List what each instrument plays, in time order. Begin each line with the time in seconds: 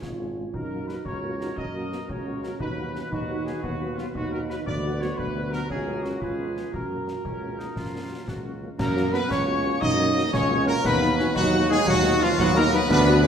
Already playing: woodwind section F4 C#5
0.02 tuba G#1, euphonium F4, concert bass drum, snare
0.20 french horn section G#3 C#4 F4
0.38 french horn section G#3 C#4 F4
0.54 tuba F#2, euphonium D#4, woodwind section F#4 A#4, trumpet section A#4, concert bass drum
0.73 french horn section F#3 A#3 F#4
0.87 french horn section F#3 A#3 F#4, trumpet section B4, snare
1.05 tuba C#2, euphonium C#4, trumpet section C#5, concert bass drum
1.22 french horn section F#3 A#3 F#4, euphonium A#3
1.41 french horn section F#3 A#3 F#4, euphonium D#4, snare
1.56 tuba F#2, euphonium C#4, trumpet section D#5, concert bass drum
1.74 french horn section F#3 A#3 F#4, euphonium A#3
1.91 french horn section F#3 A#3 F#4, euphonium B3, snare
2.08 tuba C#2, euphonium C#4, trumpet section C#5, concert bass drum
2.27 french horn section F#3 A#3 F#4
2.43 french horn section F#3 A#3 F#4, trumpet section A#4, snare
2.59 tuba D#2, euphonium D#4, woodwind section F#4 B4, trumpet section B4, concert bass drum
2.77 french horn section F#3 B3 F#4, euphonium B3
2.94 french horn section F#3 B3 F#4, euphonium C#4, snare
3.11 tuba D#2, euphonium D#4, trumpet section F#4, concert bass drum
3.29 french horn section F#3 B3 F#4
3.46 french horn section F#3 B3 F#4, trumpet section G#4, snare
3.61 tuba D#2, euphonium B3, trumpet section F#4, concert bass drum
3.82 french horn section F#3 B3 F#4
3.96 french horn section F#3 B3 F#4, trumpet section F4, snare
4.15 tuba D#2, euphonium D#4, trumpet section F#4, concert bass drum
4.30 french horn section F#3 B3 F#4, trumpet section A#4
4.48 french horn section F#3 B3 F#4, trumpet section B4, snare
4.65 tuba D2, euphonium B3, woodwind section F#4 B4, trumpet section D5, concert bass drum
4.85 french horn section F#3 B3 F#4
5.00 french horn section F#3 B3 F#4, trumpet section C#5, snare
5.16 tuba D2, woodwind section F#4 B4, trumpet section B4, concert bass drum
5.36 french horn section F#3 B3 F#4
5.51 french horn section F#3 B3 F#4, trumpet section A#4, snare
5.69 tuba C#2, euphonium C#4, woodwind section F#4 A#4, trumpet section G#4, concert bass drum
5.88 french horn section F#3 A#3 C#4
6.03 french horn section F#3 A#3 C#4, trumpet section F#4, snare
6.20 tuba C#2, euphonium F4, woodwind section F4 B4, trumpet section G#4, concert bass drum
6.40 french horn section F3 B3 C#4
6.56 french horn section F3 B3 C#4, snare
6.71 tuba F#2, woodwind section F#4 A#4, euphonium F#4, trumpet section A#4, concert bass drum
6.91 french horn section F#3 A#3 C#4
7.08 french horn section F#3 A#3 C#4, snare
7.24 tuba C#2, woodwind section C#4, concert bass drum
7.43 french horn section F#3 A#3 C#4
7.58 french horn section F#3 A#3 C#4, woodwind section D#4, snare
7.76 tuba F#2, woodwind section F4, concert bass drum, snare
7.94 french horn section F#3 A#3 C#4
8.11 french horn section F#3 A#3 C#4
8.27 tuba C#2, woodwind section F#4, concert bass drum, snare
8.44 french horn section F#3 A#3 C#4
8.62 french horn section F#3 A#3 C#4
8.78 tuba F#2, euphonium A#3, woodwind section A#4, trumpet section A#4, piccolo A#5, concert bass drum, snare, crash
8.96 french horn section F#3 A#3 C#4, snare
9.11 french horn section F#3 A#3 C#4, euphonium B3, trumpet section B4, woodwind section B4, piccolo B5, snare
9.29 tuba C#2, trombone section A#3, euphonium C#4, trumpet section C#5, woodwind section C#5, piccolo C#6, concert bass drum, snare
9.47 french horn section F#3 A#3 C#4
9.63 french horn section F#3 A#3 C#4
9.80 tuba F#2, euphonium D#4, trumpet section D#5, woodwind section D#5, piccolo D#6, concert bass drum, snare
9.98 french horn section F#3 A#3 C#4
10.14 french horn section F#3 A#3 C#4
10.32 tuba C#2, trombone section C#4, euphonium C#4, trumpet section C#5, woodwind section C#5, piccolo C#6, concert bass drum, snare
10.50 french horn section F#3 A#3 C#4
10.66 french horn section F#3 A#3 C#4, euphonium A#3, woodwind section A#4, trumpet section A#4, piccolo A#5, snare
10.83 tuba D#2, euphonium B3, trombone section D#4, trumpet section B4, woodwind section B4, piccolo B5, concert bass drum, snare, crash
11.00 french horn section F#3 B3 D#4, trombone section B3, snare
11.17 french horn section F#3 B3 D#4, trombone section C#4, snare
11.34 tuba D#2, euphonium F#3, trombone section D#4, woodwind section F#4, trumpet section F#4, piccolo F#5, concert bass drum, snare
11.53 french horn section F#3 B3 D#4
11.69 french horn section F#3 B3 D#4, euphonium G#3, trumpet section G#4, woodwind section G#4, piccolo G#5
11.86 tuba D#2, euphonium F#3, trumpet section F#4, woodwind section F#4, piccolo F#5, concert bass drum, snare
12.04 french horn section F#3 B3 D#4
12.20 euphonium F3, french horn section F#3 B3 D#4, woodwind section F4, trumpet section F4, piccolo F5
12.38 tuba D#2, euphonium F#3, trombone section B3, woodwind section F#4, trumpet section F#4, piccolo F#5, concert bass drum, snare
12.55 french horn section F#3 B3 D#4, euphonium A#3, woodwind section A#4, trumpet section A#4, piccolo A#5
12.72 french horn section F#3 B3 D#4, euphonium B3, woodwind section B4, trumpet section B4, piccolo B5, snare
12.89 tuba D2, euphonium B3, trombone section D4, woodwind section B4, trumpet section B4, piccolo B5, concert bass drum, snare, crash
13.08 french horn section F#3 B3 F#4, snare
13.24 euphonium C#4